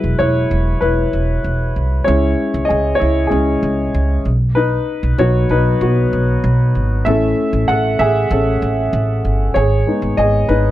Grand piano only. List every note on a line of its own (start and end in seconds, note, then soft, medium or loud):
0.00 2.08 F#3 soft
0.00 2.05 G#3 soft
0.00 0.16 E4 medium
0.00 0.21 B4 medium
0.19 0.78 E4 medium
0.19 0.83 C#5 medium
0.81 1.40 E4 medium
0.81 1.40 B4 medium
2.04 3.29 G#3 soft
2.04 3.29 C#4 soft
2.04 2.98 E4 medium
2.04 2.70 C#5 medium
2.65 2.98 G#4 medium
2.65 2.99 D#5 medium
2.95 3.03 C#5 medium
3.00 3.07 E4 medium
3.27 3.59 G#3 soft
3.27 4.21 C#4 medium
3.27 3.59 E4 soft
3.27 4.19 G#4 medium
4.55 5.15 D#4 medium
4.55 5.14 B4 medium
5.18 6.08 F#3 soft
5.18 5.81 B3 soft
5.18 5.50 D#4 soft
5.18 5.48 F#4 medium
5.18 5.51 C#5 medium
5.51 5.80 D#4 medium
5.51 5.80 B4 medium
5.82 6.72 B3 medium
5.82 6.71 F#4 medium
7.05 7.48 A3 soft
7.05 7.48 C#4 soft
7.05 7.48 E4 medium
7.05 7.65 A4 medium
7.05 7.70 E5 medium
7.68 7.99 A4 medium
7.68 8.00 F#5 medium
7.99 8.30 G#4 medium
7.99 8.32 E5 medium
8.31 9.22 C#4 soft
8.31 9.21 A4 medium
9.54 10.15 G#4 medium
9.54 10.19 C#5 medium
9.87 10.29 G#3 soft
9.87 10.29 B3 soft
9.87 10.29 D#4 soft
10.17 10.48 G#4 medium
10.17 10.50 D#5 medium
10.49 10.71 D#4 medium
10.49 10.71 B4 medium